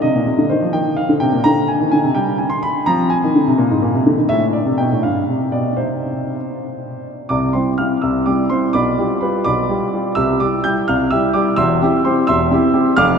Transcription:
0.02 0.15 C3 medium
0.02 1.41 D#4 soft
0.02 0.46 D#5 medium
0.15 0.27 A#2 medium
0.26 0.38 C3 medium
0.38 0.50 D3 medium
0.49 0.62 D#3 medium
0.49 0.74 C5 medium
0.62 0.74 F3 medium
0.73 0.99 D#3 medium
0.73 0.95 G5 medium
0.97 1.11 F5 medium
1.09 1.21 D3 medium
1.20 1.33 C3 medium
1.20 1.45 G5 medium
1.33 1.44 A#2 medium
1.44 1.71 D3 medium
1.44 2.12 D4 soft
1.44 1.68 A#5 loud
1.68 1.90 G#5 medium
1.81 1.92 D#3 medium
1.92 2.04 D3 medium
1.92 2.15 G#5 medium
2.04 2.15 C3 medium
2.15 2.67 G3 medium
2.15 2.36 G5 medium
2.38 2.51 G#5 medium
2.50 2.62 C6 medium
2.63 2.86 B5 medium
2.86 3.13 F3 medium
2.86 4.26 C4 soft
2.86 3.10 A#5 loud
3.10 3.54 G#5 medium
3.24 3.34 D#3 medium
3.35 3.46 D3 medium
3.48 3.58 C3 medium
3.58 3.69 A#2 medium
3.71 3.82 G#2 medium
3.82 3.93 A#2 medium
3.94 4.05 C3 medium
4.06 4.17 D3 medium
4.17 4.29 D#3 medium
4.29 4.56 A2 medium
4.29 4.99 D4 soft
4.29 4.44 E5 loud
4.53 4.75 D5 medium
4.66 4.78 C3 medium
4.78 4.90 B2 medium
4.78 5.00 G5 medium
4.92 5.03 A2 medium
5.03 5.21 G2 medium
5.03 5.33 F5 medium
5.29 5.46 C3 soft
5.52 5.71 B2 medium
5.52 5.78 D5 medium
5.77 6.32 C3 soft
5.77 6.39 C4 soft
5.77 6.39 D#4 soft
5.77 7.05 C5 medium
7.29 7.54 C2 medium
7.29 7.54 C3 medium
7.29 7.53 D5 medium
7.29 7.51 D6 medium
7.53 7.72 G3 soft
7.53 7.72 C4 soft
7.53 7.72 E4 soft
7.53 7.77 C5 soft
7.53 7.68 C6 medium
7.78 7.96 G3 soft
7.78 7.96 C4 soft
7.78 7.96 E4 soft
7.78 8.01 F5 soft
7.78 8.00 F6 medium
8.02 8.26 C2 soft
8.02 8.26 C3 soft
8.02 8.25 E5 soft
8.02 8.26 E6 medium
8.26 8.44 G3 soft
8.26 8.44 C4 soft
8.26 8.44 E4 soft
8.26 8.49 D5 medium
8.26 8.48 D6 medium
8.50 8.68 G3 soft
8.50 8.68 C4 soft
8.50 8.68 E4 soft
8.50 8.73 C5 medium
8.50 8.72 C6 medium
8.73 8.98 B1 soft
8.73 8.98 B2 medium
8.73 9.19 D5 medium
8.73 9.19 B5 medium
8.73 9.18 D6 medium
8.99 9.16 G3 soft
8.99 9.16 F4 soft
8.99 9.16 G4 soft
9.21 9.39 G3 soft
9.21 9.39 F4 soft
9.21 9.40 G4 soft
9.21 9.44 B4 medium
9.21 9.43 B5 medium
9.44 9.69 B1 soft
9.44 9.69 B2 medium
9.44 10.13 D5 medium
9.44 10.13 B5 medium
9.44 9.88 D6 medium
9.69 9.87 G3 soft
9.69 9.87 F4 soft
9.69 9.87 G4 medium
9.94 10.11 G3 soft
9.94 10.11 F4 soft
9.94 10.11 G4 soft
10.15 10.40 C2 medium
10.15 10.40 C3 medium
10.15 10.39 E5 medium
10.15 10.37 E6 medium
10.40 10.58 G3 soft
10.40 10.58 E4 soft
10.40 10.59 G4 soft
10.40 10.63 D5 medium
10.40 10.64 D6 medium
10.64 10.82 G3 soft
10.64 10.82 E4 soft
10.64 10.82 G4 soft
10.64 10.87 G5 medium
10.64 10.88 G6 medium
10.88 11.11 C2 medium
10.88 11.11 C3 medium
10.88 11.10 F5 medium
10.88 11.09 F6 medium
11.11 11.29 G3 medium
11.11 11.29 E4 soft
11.11 11.29 G4 medium
11.11 11.34 E5 medium
11.11 11.35 E6 medium
11.33 11.52 G3 medium
11.33 11.52 E4 medium
11.33 11.52 G4 medium
11.33 11.57 D5 medium
11.33 11.55 D6 medium
11.56 11.81 E1 medium
11.56 11.81 E2 medium
11.56 12.01 E5 medium
11.56 12.01 C6 medium
11.56 12.04 E6 loud
11.82 11.99 C4 medium
11.82 11.99 E4 medium
11.82 11.99 G4 medium
12.05 12.22 C4 soft
12.05 12.22 E4 medium
12.05 12.23 G4 medium
12.05 12.27 C5 medium
12.05 12.26 C6 medium
12.27 12.51 E1 medium
12.27 12.51 E2 medium
12.27 12.94 E5 medium
12.27 12.94 C6 medium
12.27 12.98 E6 loud
12.51 12.68 C4 medium
12.51 12.69 E4 medium
12.51 12.69 G4 medium
12.74 12.91 C4 medium
12.74 12.91 E4 medium
12.74 12.91 G4 medium
12.96 13.19 F1 medium
12.96 13.19 F2 medium
12.96 13.19 F5 medium
12.96 13.19 D6 medium
12.96 13.19 F6 loud

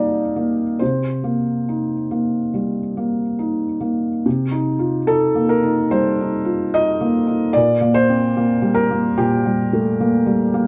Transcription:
0.00 0.83 G3 soft
0.00 0.36 A#3 soft
0.00 0.82 D#4 soft
0.00 0.80 D5 medium
0.00 0.82 D#5 medium
0.00 0.83 F5 medium
0.00 0.83 G5 medium
0.36 0.80 A#3 soft
0.79 2.50 C3 soft
0.79 3.82 C5 medium
1.24 1.93 A#3 soft
1.69 2.37 D#4 soft
2.11 2.79 A#3 soft
2.54 3.22 G3 soft
2.97 3.65 A#3 soft
3.39 4.08 D#4 soft
3.80 4.24 A#3 soft
4.26 5.88 C3 medium
4.51 4.97 D#4 soft
4.79 5.08 F4 soft
5.07 5.53 D#4 soft
5.07 5.50 A4 medium
5.35 5.80 A#3 soft
5.49 5.91 A#4 medium
5.63 6.07 D#4 soft
5.91 6.35 G3 soft
5.91 6.73 C5 medium
6.21 6.64 D#4 soft
6.45 6.73 F4 soft
6.74 7.17 D#4 medium
6.74 7.55 D#5 medium
7.01 7.44 A#3 soft
7.27 7.55 D#4 medium
7.53 9.14 A#2 medium
7.53 7.94 D5 medium
7.81 8.25 A#3 soft
7.94 8.76 C5 loud
8.09 8.36 C4 soft
8.37 8.80 A#3 medium
8.62 9.06 G3 medium
8.74 9.16 A#4 medium
8.90 9.34 A#3 medium
9.18 10.67 A#2 medium
9.18 10.39 G4 medium
9.45 9.88 G3 medium
9.73 9.99 A3 soft
10.00 10.43 A#3 medium
10.27 10.67 G3 medium
10.54 10.67 A#3 medium

